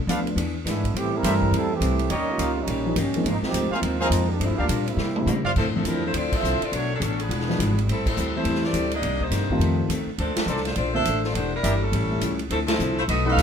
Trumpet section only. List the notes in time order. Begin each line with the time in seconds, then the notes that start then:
0.08 A4 B4 D5 F5
1.23 G4 A4 C5 E5
2.10 G4 A#4 C#5 D#5
3.72 G#4 A#4 C5 F5
4.00 G#4 A#4 C5 F5
4.57 G4 A#4 D5 F5
5.45 F4 C5 D5 F5
10.48 A4 A#4 C5 D5
11.62 G4 A#4 D5 E5
13.26 F#4 A4 B4 D#5